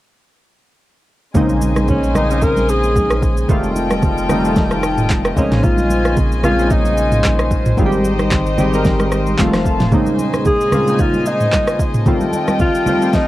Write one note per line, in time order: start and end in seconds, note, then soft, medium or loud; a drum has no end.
1.34 3.45 A#1 medium
1.34 2.00 C#3 medium
1.34 3.47 C#3 medium
1.34 2.00 G#3 medium
1.34 2.01 A#3 medium
1.34 2.01 C4 medium
1.34 2.01 D#4 loud
1.34 3.47 C5 medium
1.34 3.47 D#5 medium
1.34 3.47 G#5 medium
1.34 kick loud
1.34 low conga medium
1.34 shaker medium
1.49 high conga medium
1.49 shaker soft
1.62 high conga medium
1.62 shaker loud
1.76 cross-stick medium
1.76 high conga medium
1.76 shaker medium
1.88 2.14 C#4 medium
1.88 kick medium
1.88 low conga medium
1.88 shaker medium
2.04 shaker medium
2.15 2.27 C#3 medium
2.15 2.27 G#3 medium
2.15 2.27 A#3 medium
2.15 2.28 C4 medium
2.15 2.45 D#4 medium
2.15 2.28 D#4 medium
2.15 cross-stick medium
2.15 high conga medium
2.15 low conga medium
2.15 shaker medium
2.29 3.15 C#3 medium
2.29 3.15 G#3 medium
2.29 3.15 A#3 medium
2.29 3.16 C4 medium
2.29 2.37 C#4 medium
2.29 shaker medium
2.38 3.19 D#4 medium
2.38 kick loud
2.38 shaker medium
2.43 2.72 A#4 loud
2.56 high conga medium
2.56 shaker soft
2.69 3.23 G#4 medium
2.69 shaker medium
2.83 high conga soft
2.83 shaker medium
2.96 kick medium
2.96 high conga medium
2.96 shaker medium
3.10 cross-stick loud
3.10 shaker medium
3.22 kick loud
3.22 shaker medium
3.37 shaker medium
3.48 5.33 F1 medium
3.48 4.14 D#3 medium
3.48 4.14 G3 medium
3.48 4.15 A3 medium
3.48 4.15 C4 medium
3.48 5.35 F4 medium
3.48 4.15 F4 loud
3.48 5.35 A4 medium
3.48 7.74 D#5 medium
3.48 5.35 G5 medium
3.48 kick loud
3.48 low conga medium
3.48 shaker medium
3.63 high conga medium
3.63 shaker soft
3.76 high conga medium
3.76 shaker loud
3.91 cross-stick medium
3.91 high conga medium
3.91 shaker medium
4.02 kick medium
4.02 low conga medium
4.02 shaker medium
4.18 shaker medium
4.29 4.41 D#3 medium
4.29 4.41 G3 medium
4.29 4.42 A3 medium
4.29 4.42 C4 medium
4.29 4.42 D#4 loud
4.29 cross-stick medium
4.29 high conga medium
4.29 low conga medium
4.29 shaker medium
4.44 5.29 D#3 medium
4.44 5.29 G3 medium
4.44 5.30 A3 medium
4.44 5.30 C4 medium
4.44 5.30 D#4 medium
4.44 shaker medium
4.56 kick loud
4.56 snare medium
4.56 shaker medium
4.71 cross-stick medium
4.71 high conga medium
4.71 shaker soft
4.83 cross-stick medium
4.83 shaker loud
4.98 mid tom medium
4.98 high conga soft
4.98 shaker medium
5.10 kick medium
5.10 clap loud
5.10 high conga medium
5.10 shaker medium
5.25 cross-stick loud
5.25 shaker medium
5.36 7.74 A#1 medium
5.36 6.23 C#3 medium
5.36 7.75 C#3 medium
5.36 6.23 G#3 medium
5.36 6.23 A#3 medium
5.36 6.24 C4 medium
5.36 5.66 C#4 medium
5.36 6.24 D#4 medium
5.36 12.02 C5 medium
5.36 7.75 G#5 medium
5.36 kick medium
5.36 shaker medium
5.52 snare medium
5.52 mid tom medium
5.52 shaker medium
5.63 6.18 F4 loud
5.63 kick loud
5.63 low conga medium
5.63 shaker medium
5.78 high conga medium
5.78 shaker soft
5.90 high conga medium
5.90 shaker medium
6.05 cross-stick medium
6.05 high conga medium
6.05 shaker medium
6.16 kick medium
6.16 low conga medium
6.16 shaker medium
6.32 shaker medium
6.43 6.55 C#3 medium
6.43 6.56 G#3 medium
6.43 6.56 A#3 medium
6.43 6.56 C4 medium
6.43 6.73 F4 loud
6.43 6.57 F4 medium
6.43 cross-stick medium
6.43 high conga medium
6.43 low conga medium
6.43 shaker medium
6.58 7.44 C#3 medium
6.58 7.44 G#3 medium
6.58 7.44 A#3 medium
6.58 7.44 C4 medium
6.58 6.65 C#4 medium
6.58 shaker medium
6.67 7.48 D#4 medium
6.67 kick loud
6.67 shaker medium
6.72 7.52 D#4 loud
6.85 high conga medium
6.85 shaker soft
6.97 shaker loud
7.12 mid tom medium
7.12 high conga medium
7.12 shaker medium
7.24 kick medium
7.24 clap medium
7.24 high conga medium
7.24 shaker medium
7.39 cross-stick loud
7.39 shaker medium
7.51 kick loud
7.51 shaker medium
7.66 mid tom medium
7.66 shaker medium
7.77 9.35 G#1 medium
7.77 8.43 D#3 medium
7.77 8.43 G3 medium
7.77 8.43 G#3 medium
7.77 8.44 C4 medium
7.77 9.37 D#4 medium
7.77 7.86 F4 medium
7.77 9.37 D#5 medium
7.77 9.37 G5 medium
7.77 kick loud
7.77 low conga medium
7.77 shaker medium
7.86 8.47 G4 loud
7.92 high conga medium
7.92 shaker soft
8.04 high conga medium
8.04 shaker loud
8.19 cross-stick medium
8.19 high conga medium
8.19 shaker medium
8.31 kick medium
8.31 clap medium
8.31 low conga medium
8.31 shaker medium
8.46 shaker soft
8.57 8.70 D#3 medium
8.57 8.70 G3 medium
8.57 8.70 G#3 medium
8.57 8.71 C4 medium
8.57 8.71 G4 loud
8.57 high conga medium
8.57 low conga medium
8.57 shaker medium
8.72 9.37 D#3 medium
8.72 9.38 G3 medium
8.72 9.39 G#3 medium
8.72 9.39 C4 medium
8.72 9.39 A#4 loud
8.72 shaker medium
8.85 kick loud
8.85 snare medium
8.85 low conga medium
8.85 shaker medium
8.99 cross-stick medium
8.99 high conga medium
8.99 shaker soft
9.12 cross-stick medium
9.12 shaker medium
9.26 high conga soft
9.26 shaker medium
9.38 9.91 F1 medium
9.38 9.82 D#3 medium
9.38 9.82 F3 medium
9.38 9.83 A3 medium
9.38 9.83 C4 medium
9.38 9.91 D#4 medium
9.38 9.83 F4 loud
9.38 9.91 F5 medium
9.38 9.91 A5 medium
9.38 kick medium
9.38 clap medium
9.38 high conga medium
9.38 shaker medium
9.53 cross-stick loud
9.53 snare medium
9.53 shaker medium
9.65 kick medium
9.65 shaker medium
9.80 snare medium
9.80 mid tom loud
9.80 shaker medium
9.92 12.05 A#2 medium
9.92 10.57 C#3 medium
9.92 12.04 C#3 medium
9.92 10.58 G#3 medium
9.92 10.58 A#3 medium
9.92 10.58 C4 medium
9.92 10.58 D#4 loud
9.92 13.28 D#5 medium
9.92 12.04 G#5 medium
9.92 kick loud
9.92 low conga medium
9.92 shaker medium
10.06 high conga medium
10.06 shaker soft
10.19 high conga medium
10.19 shaker medium
10.34 cross-stick medium
10.34 high conga medium
10.34 shaker medium
10.45 11.02 G#4 loud
10.45 kick medium
10.45 low conga medium
10.45 shaker medium
10.61 shaker medium
10.72 10.84 C#3 medium
10.72 10.84 G#3 medium
10.72 10.84 A#3 medium
10.72 10.85 C4 medium
10.72 10.85 F4 medium
10.72 cross-stick medium
10.72 high conga medium
10.72 low conga medium
10.72 shaker medium
10.87 11.72 C#3 medium
10.87 11.72 G#3 medium
10.87 11.73 A#3 medium
10.87 11.73 C4 medium
10.87 11.73 D#4 medium
10.87 shaker medium
10.99 11.29 F4 medium
10.99 kick loud
10.99 shaker medium
11.13 high conga medium
11.13 shaker soft
11.26 11.80 D#4 medium
11.26 shaker loud
11.41 mid tom medium
11.41 high conga medium
11.41 shaker medium
11.52 kick medium
11.52 clap medium
11.52 high conga medium
11.52 shaker medium
11.68 cross-stick loud
11.68 shaker medium
11.79 kick medium
11.79 shaker medium
11.94 mid tom loud
11.94 shaker medium
12.06 12.71 D#3 medium
12.06 12.72 G3 medium
12.06 12.72 A3 medium
12.06 12.72 C4 medium
12.06 13.28 F4 medium
12.06 12.73 F4 loud
12.06 13.28 A4 medium
12.06 13.28 G5 medium
12.06 kick loud
12.06 low conga medium
12.06 shaker medium
12.21 high conga medium
12.21 shaker soft
12.33 high conga medium
12.33 shaker medium
12.48 cross-stick medium
12.48 high conga medium
12.48 shaker medium
12.59 13.16 F4 loud
12.59 kick medium
12.59 low conga medium
12.59 shaker medium
12.75 shaker soft
12.86 12.98 D#3 medium
12.86 12.99 G3 medium
12.86 12.99 A3 medium
12.86 12.99 C4 medium
12.86 13.00 F4 medium
12.86 high conga medium
12.86 low conga medium
12.86 shaker medium
13.01 13.28 D#3 medium
13.01 13.28 G3 medium
13.01 13.28 A3 medium
13.01 13.28 C4 medium
13.01 13.28 F4 medium
13.01 shaker medium
13.13 13.28 D#4 loud
13.13 kick loud
13.13 snare medium
13.13 shaker medium